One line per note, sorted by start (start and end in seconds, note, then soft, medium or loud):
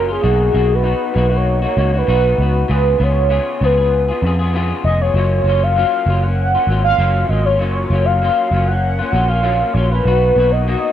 0.00 0.17 F#1 medium
0.00 0.10 A#4 medium
0.08 0.22 A#3 soft
0.08 0.23 C#4 soft
0.08 0.23 F4 soft
0.08 0.76 G#4 loud
0.21 0.49 B1 medium
0.21 0.51 B2 medium
0.21 0.53 A#3 medium
0.21 0.54 D#4 medium
0.21 0.55 F#4 medium
0.52 0.93 B1 medium
0.52 0.81 B2 medium
0.52 0.85 A#3 medium
0.52 0.83 D#4 medium
0.56 0.84 F#4 medium
0.74 1.38 B4 loud
0.82 1.13 B2 medium
0.82 1.15 D#4 medium
0.82 1.16 F#4 medium
1.14 1.65 B1 medium
1.14 1.32 B2 medium
1.14 1.32 A#3 medium
1.14 1.30 D#4 medium
1.18 1.28 F#4 medium
1.30 1.64 A#3 soft
1.30 1.63 D#4 soft
1.30 1.61 F#4 medium
1.37 1.99 C#5 medium
1.62 1.78 D#4 soft
1.62 1.77 F#4 medium
1.66 1.76 A#3 soft
1.76 2.02 C#2 medium
1.76 1.94 B2 soft
1.76 1.94 A#3 medium
1.76 1.94 D#4 medium
1.76 1.92 F#4 medium
1.94 2.10 A#3 soft
1.94 2.07 D#4 soft
1.94 2.08 F#4 soft
1.98 2.71 B4 medium
2.07 2.33 B1 medium
2.07 2.37 B2 medium
2.07 2.39 D#4 medium
2.07 2.40 F#4 medium
2.38 2.63 C#2 medium
2.38 2.68 B2 medium
2.38 2.70 D#4 soft
2.38 2.70 F#4 medium
2.68 2.94 C#2 medium
2.68 2.97 C#3 medium
2.68 2.99 B3 medium
2.68 3.00 F4 medium
2.68 3.01 G#4 medium
2.73 3.05 B4 medium
2.98 3.38 C#2 medium
2.98 3.28 C#3 medium
2.98 3.29 B3 medium
2.98 3.30 F4 medium
2.98 3.30 G#4 medium
3.03 3.66 C#5 medium
3.29 3.59 C#3 medium
3.29 3.61 B3 medium
3.29 3.62 F4 medium
3.29 3.62 G#4 medium
3.60 4.11 C#2 medium
3.60 3.78 C#3 medium
3.60 3.79 B3 medium
3.60 3.79 F4 medium
3.60 3.76 G#4 medium
3.65 4.25 B4 medium
3.77 4.11 B3 soft
3.77 4.09 F4 soft
3.77 4.07 G#4 soft
4.08 4.23 B3 soft
4.08 4.24 F4 soft
4.08 4.23 G#4 soft
4.22 4.72 F2 medium
4.22 4.40 C#3 medium
4.22 4.40 B3 medium
4.22 4.40 F4 medium
4.27 4.38 G#4 medium
4.39 4.54 B3 soft
4.39 4.54 F4 medium
4.39 4.53 G#4 medium
4.54 4.83 C#3 medium
4.54 4.85 B3 medium
4.54 4.85 F4 medium
4.54 4.86 G#4 medium
4.84 5.09 F1 medium
4.84 5.01 C#3 medium
4.84 5.02 B3 medium
4.84 5.03 F4 medium
4.84 5.00 G#4 medium
4.84 5.03 D#5 loud
5.01 5.16 B3 soft
5.01 5.16 F4 soft
5.01 5.15 G#4 soft
5.01 5.65 C#5 medium
5.14 5.39 F#1 medium
5.14 5.44 F#3 medium
5.14 5.46 A#3 medium
5.14 5.47 C#4 medium
5.14 5.47 F4 medium
5.44 5.83 F#1 medium
5.44 5.75 F#3 medium
5.44 5.76 A#3 medium
5.44 5.77 C#4 medium
5.49 5.78 F4 medium
5.63 6.24 F5 loud
5.76 6.05 F#3 medium
5.76 6.07 A#3 medium
5.76 6.08 C#4 medium
5.76 6.08 F4 medium
6.06 6.56 F#1 medium
6.06 6.23 F#3 medium
6.06 6.24 A#3 medium
6.06 6.25 C#4 medium
6.06 6.25 F4 medium
6.23 6.55 C#4 soft
6.23 6.83 F#5 medium
6.28 6.56 A#3 soft
6.55 6.68 A#3 soft
6.55 6.69 C#4 medium
6.55 6.68 F4 soft
6.67 6.92 G#1 medium
6.67 6.85 F#3 soft
6.67 6.86 A#3 medium
6.67 6.86 C#4 medium
6.72 6.84 F4 medium
6.84 6.99 C#4 soft
6.84 6.99 F4 medium
6.84 7.27 F5 loud
6.89 6.99 A#3 soft
6.98 7.23 F#1 medium
6.98 7.28 F#3 medium
6.98 7.29 A#3 medium
6.98 7.30 C#4 medium
6.98 7.31 F4 medium
7.27 7.60 G#1 medium
7.27 7.46 F#3 medium
7.27 7.47 A#3 soft
7.27 7.47 D#5 loud
7.27 7.30 F5 medium
7.32 7.47 C#4 soft
7.32 7.45 F4 soft
7.45 7.60 C#4 soft
7.45 7.60 F4 soft
7.45 8.07 C#5 medium
7.50 7.59 A#3 soft
7.59 7.84 F#1 medium
7.59 7.89 F#3 medium
7.59 7.91 A#3 medium
7.59 7.92 C#4 medium
7.59 7.92 F4 medium
7.90 8.29 F#1 medium
7.90 8.21 F#3 medium
7.90 8.21 A#3 medium
7.90 8.23 C#4 medium
7.94 8.23 F4 medium
8.05 8.69 F5 loud
8.22 8.51 F#3 medium
8.22 8.52 A#3 medium
8.22 8.53 C#4 medium
8.22 8.54 F4 medium
8.51 9.01 F#1 medium
8.51 8.69 F#3 medium
8.51 8.70 A#3 medium
8.51 8.69 C#4 medium
8.56 8.71 F4 medium
8.67 9.00 C#4 soft
8.67 9.30 F#5 loud
8.71 9.01 A#3 soft
8.99 9.12 A#3 soft
8.99 9.13 C#4 soft
8.99 9.13 F4 soft
9.12 9.62 A#1 medium
9.12 9.30 F#3 soft
9.12 9.30 A#3 medium
9.12 9.30 C#4 medium
9.12 9.27 F4 medium
9.28 9.44 C#4 soft
9.28 9.43 F4 soft
9.28 9.75 F5 loud
9.33 9.42 A#3 soft
9.43 9.72 F#3 medium
9.43 9.74 A#3 medium
9.43 9.75 C#4 medium
9.43 9.76 F4 medium
9.73 9.99 A#1 medium
9.73 9.91 F#3 medium
9.73 9.92 A#3 medium
9.73 9.92 C#4 medium
9.73 9.90 F4 medium
9.73 9.90 C#5 medium
9.90 10.07 C#4 soft
9.90 10.06 F4 soft
9.90 10.53 B4 medium
9.95 10.07 A#3 soft
10.05 10.30 B1 medium
10.05 10.35 B2 medium
10.05 10.37 D#4 medium
10.05 10.37 F#4 medium
10.36 10.74 B1 medium
10.36 10.65 B2 medium
10.36 10.67 A#3 medium
10.36 10.67 D#4 medium
10.36 10.68 F#4 medium
10.51 10.92 D#5 loud
10.67 10.92 B2 medium
10.67 10.92 A#3 medium
10.67 10.92 D#4 medium
10.67 10.92 F#4 medium